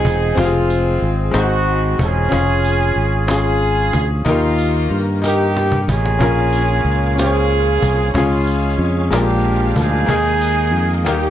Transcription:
Already playing: G#2 C4 D#4 F4 G#4
0.05 E1, cajon bass, tambourine
0.35 F1 G#3 C4 F4 G4, cajon bass, tambourine
0.40 F4
0.45 G#4
0.70 tambourine
1.02 G#1, cajon slap
1.31 G#1 G#2 G#3 C4 D#4 F#4 C5, cajon slap, tambourine
1.37 C4 D#4 F#4
1.67 cajon slap
1.99 E1 C#4 F4, cajon bass, tambourine
2.03 G#4
2.29 F1 C#4 F4, cajon bass, tambourine
2.33 G#4
2.64 cajon slap, tambourine
2.95 G#1, cajon slap
3.27 C#4 F4, cajon slap, tambourine
3.31 C#4 F4 G#4
3.62 cajon slap
3.93 D2, cajon bass, tambourine
4.25 D#2 D#3 A#3 D#4 F4 G4, cajon bass, tambourine
4.29 A#4
4.58 tambourine
4.90 G2, cajon slap
5.22 A#3 D#4 G4 A#4, cajon slap, tambourine
5.57 cajon slap
5.72 cajon bass
5.88 A1 C#4 F4 G#4, cajon bass, tambourine
6.05 cajon slap
6.19 A#1 A#2 A#3 C4 C#4 F4 A#4, cajon bass, tambourine
6.27 C#4
6.52 cajon slap, tambourine
6.85 C#2, cajon slap
7.16 C#4 F4 G#4, cajon slap, tambourine
7.20 C5
7.26 C#5
7.51 cajon slap
7.82 C2, cajon bass, tambourine
8.14 C#2 C#3 G#3 C#4 F4 G#4, cajon bass, tambourine
8.47 cajon slap, tambourine
8.78 F2, cajon slap
9.10 A#1 A#2 C#3 F3 G#3 A#3 D4 F4 A#4, cajon slap, tambourine
9.15 G4
9.45 cajon slap
9.76 D2, cajon bass, tambourine
9.80 D#4 G#4
10.06 D#2 D#3 G#3 A#3 D#4 G#4, cajon bass, tambourine
10.41 cajon slap, tambourine
10.73 F2, cajon slap
11.04 D#2 D#3 G3 A#3 D#4, cajon slap, tambourine
11.08 G4

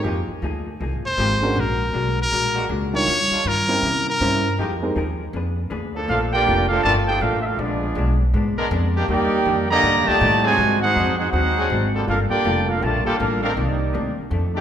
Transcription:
0.02 F2 D#3 F3 G#3 A#3 G4
0.06 A#3 D#4 G#4
0.28 muted upright bass stroke
0.42 D2 F3 A#3 D#4 G#4
0.80 C2 F3 A#3 D#4 G#4
0.93 G#1
1.06 F1 C5
1.17 G#1 D#3 F3 G#3 A#3 D#4 G4 G#4
1.42 G#3 C#4 D4 F#4 A#4
1.55 A#1 A#2 G#3 D4 F#4
1.60 A#4
1.93 B1 A#2 G#3 D4 F#4
2.22 A#4
2.31 A#1 A#2 G#3 D4 F#4
2.54 D3 G#3 A#3 F#4
2.69 C#2 A#2 G#3 D4 F#4
2.93 G3 D4 D#4 F4 A#4 C#5
3.07 D#2 D#3 G3 D4 F4
3.30 D#3 G3 D4 F4, muted upright bass stroke
3.45 G2 D#3 G3 D4 F4 A#4
3.68 G3 C4 C#4 E4 A#4
3.82 C3 A#3 C#4 E4
4.10 A#4
4.20 G2 C3 G3 A#3 C4 C#4 E4 C5
4.57 F2 D#3 F3 G#3 A#3 D#4 G4 G#4
4.62 A#4
4.82 G#3 C4 D#4 G4 A#4
4.95 D#2 F3 D#4 G#4 A#4
5.33 F2 A#3 D4 G#4 B4
5.70 D2 A#3 D4 G#4 B4
5.95 F3 A#3 D4 A4
6.08 A#1 A#2 A3 D4 F4 A4 A#4 F5
6.32 A#3 D4 F4 G4 A#4 D5 G5
6.46 F1 A#2 A3 D4 F4
6.69 F3 A3 A#3 D4 F4 A4 A#4 F5
6.83 G1 A#2 D3 F3 A3 D4 F4 A#4 D5 A5
6.88 F4
7.08 D#4 G4 A4 C5 G5
7.21 A1 A#2 A3 D4 F4 A4 A#4 F5
7.41 E5
7.46 A3 D4 F4 A4 A#4 F5
7.58 A#1 A#2 F3 G#3 B3 D4 F4 G#4 D5
7.95 B1 A#2 G#3 B3 D4
8.34 G#2 A#2 G#3 B3 D4
8.57 G#3 B3 D4 A#4, muted upright bass stroke
8.71 F2 A#2 G#3 B3 D4
8.96 D#3 A#3 D4 G4
9.08 D#2 D#3 G3 A#3 D4 D#4 G4 A#4 D5 G5
9.45 F2 D#3 G3 A#3 D4
9.70 D3 G3 A#3 G4 D5 D#5 A#5
9.83 G2 D#3 G3 A#3 D4
9.95 D#2
10.06 D2 A#2 D3 D#3 A3 A#3 D4 G4 D5 D#5 A5
10.21 A2 D#3 G3 A#3 D4
10.43 C3 D#3 F#3 G#3 C4 D4 F#4 G#4 C5 D#5 G#5
10.58 G#2 F#3 C4 D4
10.80 C4 D#4 F#4 G#4 C5 F#5
10.95 F2 G#2 F#3 C4 D4
11.16 C4 D#4 F#4 G#4 C5 F#5
11.29 C4 D#4 F#4 G#4 C5 F#5
11.33 D#2 G#2 F#3 C4 D4
11.58 F#3 C4 D4 G#4
11.70 G#1 G#2 F#3 C4 D4
11.94 G3 A#3 F4 A4
12.04 G1 G3 A#3 D4 F4 A4 A#4 F5
12.10 A#3 F4 A4
12.28 A#3 D4 F4 G4 A#4 D5 G5, muted upright bass stroke
12.45 F1 G3 A#3 F4 A4
12.66 A#3 D4 F4 A4 A#4 F5
12.80 A#1 D3 F3 G3 A3 A#3 F4 A#4 D5 A5
12.84 F4 A4
13.04 G3 A#3 D4 F4 G4 A4 A#4 D5 G5, muted upright bass stroke
13.17 A1 G3 A#3 D4 F4 A4 A#4 F5
13.21 A4
13.42 D#3 A#3 C4 D4 F4 A4 A#4 F5
13.56 C2 C3 D#3 G3 A#3 D4 D#4 G4 D5
13.93 D2 C3 D#3 A#3 D4
14.18 muted upright bass stroke
14.30 F2 D#3 A3 D4
14.55 D#3 A3 D4 G4

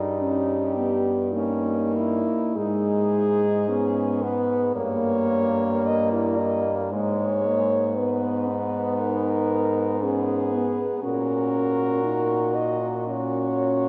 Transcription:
Already playing: G2 D#4
0.21 C#4 G4
0.77 B3
1.33 A#3 C#4 D#4
1.96 E4
2.55 G#2 G#3 D#4 G#4
3.69 B3 C#4
4.22 B3 B4
4.75 G2 A#3 C#5
5.87 D#5
6.12 E4
6.38 D#5
6.92 G#2 G#3 C#5
7.45 A#3
7.95 B3 B4
8.48 D#4
8.99 A#4
10.02 B3 C#4 G#4
10.54 B3
11.03 A#2 C#4 F#4 A#4
12.04 D#4
12.55 D#5
13.07 C#4 F#4 C#5

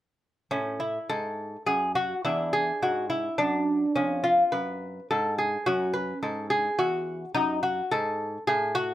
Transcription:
0.51 A2 C#4
0.80 E4
1.09 G#2 A4
1.66 F#2 G#4
1.95 F#4
2.25 E2 D4 E4
2.53 G#4
2.82 G#2 F#4
3.10 E4
3.38 F#2 D4
3.96 F2 C#4
4.24 F4
4.52 F#2 B4
5.11 G#2 A4
5.38 G#4
5.66 F#2 C#4 F#4
5.94 B4
6.23 G#2 A4
6.50 G#4
6.79 E2 F#4
7.35 F#2 D#4
7.63 F#4
7.91 G#2 A4
8.47 A2 G#4
8.75 F#4

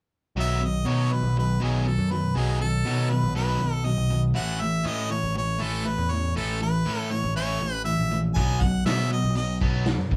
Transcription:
0.36 B1 B2 D#3 F#3 B3
0.40 E5
0.61 B2 D#3 F#3
0.65 D#5
0.85 B2 D#3 F#3 B3 C#5
1.11 B2 D#3 F#3 B4
1.23 B1
1.37 B2 D#3 F#3 B4
1.60 B1 B2 D#3 F#3 B3 G#4
1.87 B2 D#3 F#3 A4
1.98 F#2
2.11 B2 D#3 F#3 B4
2.35 B1 B2 D#3 F#3 B3 G#4
2.61 B2 D#3 F#3 A4
2.85 B2 D#3 F#3 B3
3.11 B2 D#3 F#3 B4
3.23 B1
3.35 B2 D#3 F#3 B3 B4
3.59 B1 B2 D#3 F#3
3.74 A4
3.84 B2 D#3 F#3 D#5
3.97 B1
4.10 B2 D#3 F#3
4.34 A1 A2 E3 A3 F#5
4.61 A2 E3 E5
4.84 A2 E3 A3 D#5
5.10 A2 E3 C#5
5.23 A1
5.34 A2 E3 C#5
5.58 A1 A2 E3 A3 A4
5.85 A2 E3 B4
5.98 E2
6.11 A2 E3 C#5
6.35 A1 A2 E3 A3 A4
6.60 A2 E3 B4
6.85 A2 E3 A3
6.99 A4
7.10 A2 E3 C#5
7.24 A1
7.36 A2 E3 A3 C#5
7.60 A1 A2 E3
7.85 A2 E3 E5
7.98 A#1
8.11 A2 E3
8.34 B1 B2 F#3 B3 G#5, kick, open hi-hat
8.61 B2 F#3 F#5, kick
8.85 B2 F#3 B3 E5, snare, open hi-hat
9.11 B2 F#3 D#5
9.24 B1
9.35 B2 F#3 D#5, open hi-hat
9.61 B1 B2 F#3 B3, kick
9.86 B2 F#3, snare, open hi-hat
9.98 F#2
10.11 B2 F#3, kick

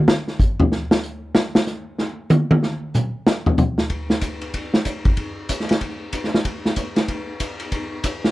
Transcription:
0.08 snare
0.28 snare
0.40 kick, hi-hat pedal
0.60 floor tom
0.72 snare
0.91 snare
1.03 hi-hat pedal
1.35 snare
1.55 snare
1.66 snare, hi-hat pedal
1.98 snare
2.30 hi-hat pedal, high tom
2.51 high tom
2.63 snare
2.94 hi-hat pedal, mid tom
3.27 snare
3.46 floor tom
3.58 floor tom, hi-hat pedal
3.78 snare
3.90 kick, ride
4.10 snare
4.21 kick, hi-hat pedal, ride
4.41 ride
4.54 kick, ride
4.74 snare
4.85 kick, hi-hat pedal, ride
5.05 kick, ride
5.17 kick, ride
5.49 kick, hi-hat pedal, ride
5.60 snare
5.69 snare, ride
5.81 kick, ride
6.13 kick, hi-hat pedal, ride
6.24 snare
6.34 snare
6.45 kick, ride
6.65 snare
6.76 kick, hi-hat pedal, ride
6.96 snare, ride
7.08 kick, ride
7.40 kick, hi-hat pedal, ride
7.60 ride
7.72 kick, ride
8.04 kick, hi-hat pedal, ride
8.24 snare

